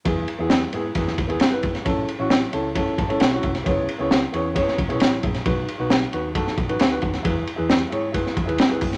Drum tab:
RD |x-x-x-x-x-xxx-xx|x-x-x-x-x-xxx-xx|x-x-x-x-x-xxx-xx|x-x-x-x-x-xxx-xx|
HH |----------------|----------------|----------------|----------------|
SD |----o----o--o--o|----o-------o--o|----o----o--o--o|----o----o--o--o|
BD |o-------o-o---o-|o-------o-o---o-|o-------o-o---o-|o-------o-o---o-|

RD |x-x-x-x-x-xxx-xx|
HH |--------------o-|
SD |----o----o--o--o|
BD |o-------o-o---o-|